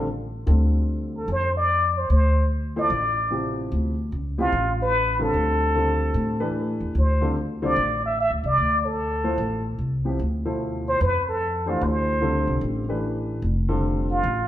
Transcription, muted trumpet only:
1.17 A4
1.32 C5
1.57 D5
1.98 C5
2.11 C5
2.79 D5
4.41 F4
4.82 B4
5.23 A4
6.99 C5
7.65 D5
8.05 E5
8.20 E5
8.46 D5
8.86 A4
10.89 C5
11.02 B4
11.29 A4
11.69 F4
11.84 C5
14.11 F4

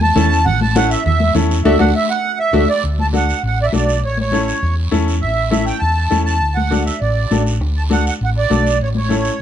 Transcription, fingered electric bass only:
Already playing: E2
0.16 E2
0.46 A1
1.06 E2
1.35 E2
1.65 D2
1.80 D2
2.53 D2
2.84 D2
3.43 A1
3.74 B1
4.04 A1
4.63 E2
4.92 E2
5.22 A1
5.82 E2
6.12 E2
6.41 D2
7.01 A1
7.31 A1
7.61 D2
8.21 A1
8.51 B1
8.81 A1

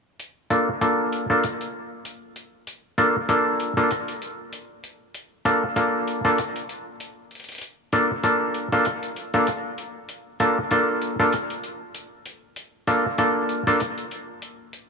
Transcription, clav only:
0.50 A#3 D4 F4 A4
0.81 A#3 D4 F4 A4
1.30 A#3 D4 F4 A4
2.98 A#3 D4 F4 A4
3.29 A#3 D4 F4 A4
3.77 A#3 D4 F4 A4
5.45 A#3 D4 F4 A4
5.76 A#3 D4 F4 A4
6.25 A#3 D4 F4 A4
7.93 A#3 D4 F4 A4
8.23 A#3 D4 F4 A4
8.72 A#3 D4 F4 A4
9.34 A#3 D4 F4 A4
10.40 A#3 D4 F4 A4
10.71 A#3 D4 F4 A4
11.20 A#3 D4 F4 A4
12.88 A#3 D4 F4 A4
13.18 A#3 D4 F4 A4
13.67 A#3 D4 F4 A4

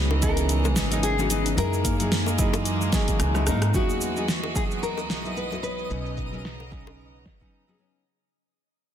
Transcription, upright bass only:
Already playing: C#2
0.76 G#1
1.57 F#2
3.19 C#2
3.47 G#2
3.75 E2
5.09 B1
5.90 B1

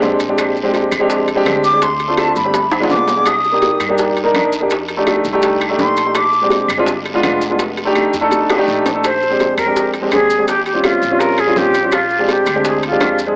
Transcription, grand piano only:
Already playing: G#3 C4 D4 G4
0.28 G#3 C4 D4 G4
0.63 G#3 C4 D4 G4
0.99 G#3 C4 D4 G4
1.35 G#3 C4 D4 G4
1.72 G#3 C4 D4 G#4
2.08 A3 C4 D4 F4
2.44 A3 C4 D4 G4
2.80 G#3 B3 D4 F4
3.16 G#3 B3 D4 G#4
3.52 A#3 D4 D#4 G4
3.89 A#3 D4 D#4 G4
4.24 A#3 D4 D#4 A#4
4.61 A#3 D4 D#4 G4
4.97 A3 D4 D#4 G4
5.33 A3 D4 D#4 G4
5.69 A3 D4 D#4 G4
6.05 A3 D4 D#4 G4
6.41 G#3 C4 D4 G4
6.77 G#3 C4 D4 F4
7.14 G#3 B3 D4 F4
7.50 G#3 B3 D4 F4
7.85 A3 D4 D#4 G4
8.21 A3 D4 D#4 A4
8.57 A3 D4 D#4 G4
8.94 A3 D4 D#4 A4
9.30 G#3 C4 D4 G4
9.66 G#3 C4 D4 G4
10.02 G#3 C4 D4 G4
10.38 G#3 C4 D4 G4
10.74 G3 C4 C#4 F4
11.10 G3 C4 C#4 F4
11.47 G3 C4 C#4 F4
11.83 G3 C4 C#4 F4
12.19 G#3 C4 D4 G4
12.54 G#3 C4 D4 G4
12.91 G#3 C4 D4 G4
13.27 G#3 C4 D4 G#4

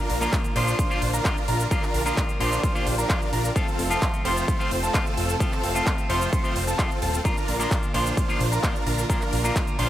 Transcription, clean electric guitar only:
0.20 A#2 F3 A#3 D4 F4
0.55 A#2 F3 A#3 D4 F4
0.90 A#2 F3 A#3 D4 F4
1.24 A#2 F3 A#3 D4 F4
1.70 A#2 F3 A#3 D4 F4
2.05 A#2 F3 A#3 D4 F4
2.40 A#2 F3 A#3 D4 F4
2.74 A#2 F3 A#3 D4 F4
3.09 A#2 F3 A#3 D4 F4
3.55 F3 A3 C4 F4
3.90 F3 A3 C4 F4
4.24 F3 A3 C4 F4
4.59 F3 A3 C4 F4
4.93 F3 A3 C4 F4
5.40 F3 A3 C4 F4
5.74 F3 A3 C4 F4
6.09 F3 A3 C4 F4
6.43 F3 A3 C4 F4
6.78 F3 A3 C4 F4
7.24 A#2 F3 A#3 D4 F4
7.59 A#2 F3 A#3 D4 F4
7.93 A#2 F3 A#3 D4 F4
8.28 A#2 F3 A#3 D4 F4
8.63 A#2 F3 A#3 D4 F4
9.09 A#2 F3 A#3 D4 F4
9.44 A#2 F3 A#3 D4 F4
9.78 A#2 F3 A#3 D4 F4

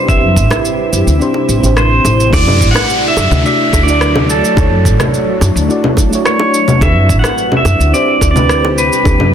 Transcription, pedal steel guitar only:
Already playing: C5
0.09 E5
1.78 C5
2.34 D5
2.71 F#5
3.08 E5
3.46 E5
3.83 D5
4.30 A4
6.26 C#5
6.83 E5
7.19 F#5
7.57 E5
7.94 D5
8.31 D5
8.78 B4

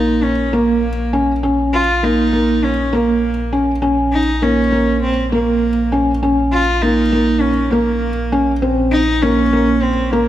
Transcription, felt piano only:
Already playing: A#3
0.53 A#3
1.13 C#4
1.43 C#4
2.03 A#3
2.33 A#3
2.93 A#3
3.53 C#4
3.82 C#4
4.42 A#3
4.72 A#3
5.32 A#3
5.92 C#4
6.23 C#4
6.82 A#3
7.12 A#3
7.72 A#3
8.32 C#4
8.62 C4
9.23 A#3
9.53 A#3
10.13 A#3

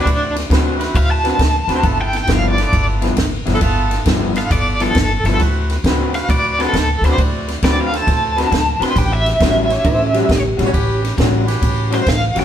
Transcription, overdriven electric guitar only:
Already playing: D4
0.97 F5
1.11 A5
2.01 G5
2.17 G5
2.33 F5
2.48 D5
2.63 D5
4.38 F5
4.52 D5
4.82 A4
5.26 A4
6.15 F5
6.31 D5
6.62 A4
7.05 C5
7.65 D5
7.81 F5
7.97 A5
8.84 C6
8.98 G5
9.14 E5
11.95 C5
12.09 F5
12.40 G5

